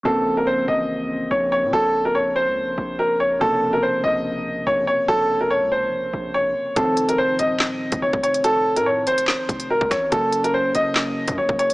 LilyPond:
<<
  \new Staff \with { instrumentName = "Upright piano" } { \time 4/4 \key bes \minor \tempo 4 = 143 a'8. bes'16 c''8 ees''4. des''8 des''8 | a'8. bes'16 des''8 c''4. bes'8 des''8 | a'8. bes'16 c''8 ees''4. des''8 des''8 | a'8. bes'16 des''8 c''4. des''4 |
a'8. bes'16 c''8 ees''4. des''8 des''8 | a'8. bes'16 des''8 c''4. bes'8 des''8 | a'8. bes'16 c''8 ees''4. des''8 des''8 | }
  \new Staff \with { instrumentName = "Synth keys" } { \clef bass \time 4/4 \key bes \minor <des f bes c'>1~ | <des f bes c'>1 | <c des f bes>1~ | <c des f bes>1 |
<ees f c'>1~ | <ees f c'>1 | <des ges bes des'>1 | }
  \new Staff \with { instrumentName = "808-style bass" } { \clef bass \time 4/4 \key bes \minor bes,,4. a,,4. bes,,8. bes,16 | bes,,4.~ bes,,16 des,16. bes,,16. bes,,4. | bes,,4. bes,,4. bes,,8 r8 | bes,,4~ bes,,16 des,8~ des,32 bes,,8~ bes,,32 bes,,4 r8 |
f,,4. ees,,4~ ees,,16 f,,16 f,,16 f,,8.~ | f,,8. a,8. f,,8. r16 f,,8. f,,16 a,,8 | ges,,4. ges,,4~ ges,,16 ges,16 ges,,16 ges,,8 ges,16 | }
  \new DrumStaff \with { instrumentName = "Drums" } \drummode { \time 4/4 r4 r4 r4 r4 | r4 r4 r4 r4 | r4 r4 r4 r4 | r4 r4 r4 r4 |
<hh bd>8 hh16 hh16 r8 hh8 <hc sn>8. <hh bd>16 r16 bd16 hh16 hh16 | hh8. hh16 r8 hh16 hh16 <hc sn>8 <hh bd>16 hh16 r16 bd16 <hh bd ss sn>8 | <hh bd>8 hh16 hh16 r8 hh8 <hc sn>8. <hh bd>16 r16 bd16 hh16 hh16 | }
>>